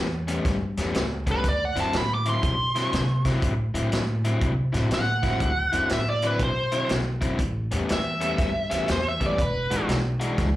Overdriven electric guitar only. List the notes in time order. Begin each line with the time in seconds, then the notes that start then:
0.27 A2 G3 B3 C#4
0.78 A2 G3 B3 C#4
1.27 A2 G3 B3 C#4
1.76 D3 F#3 C4 E4
2.26 D3 F#3 C4 E4
2.75 D3 F#3 C4 E4
3.25 D3 F#3 C4 E4
3.74 D3 F#3 C4 E4
4.25 D3 F#3 C4 E4
4.73 D3 F#3 C4 E4
5.23 D3 F#3 C4 E4
5.72 D3 F#3 C4 E4
6.23 D3 F#3 C4 E4
6.72 D3 F#3 C4 E4
7.21 D3 F#3 C4 E4
7.71 A2 G3 B3 C#4
8.21 A2 G3 B3 C#4
8.70 A2 G3 B3 C#4
9.20 A2 G3 B3 C#4
9.70 E3 G#3 D4 F#4
10.20 E3 G#3 D4 F#4